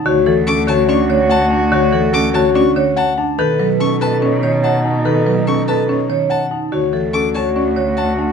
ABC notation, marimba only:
X:1
M:4/4
L:1/8
Q:1/4=144
K:Bdor
V:1 name="Marimba" clef=bass
D, E, C D, C D, z2 | D, E, C D, C D, z2 | ^D, F, C z C D, z2 | ^D, F, C z C D, z2 |
D, E, C z C D, z2 |]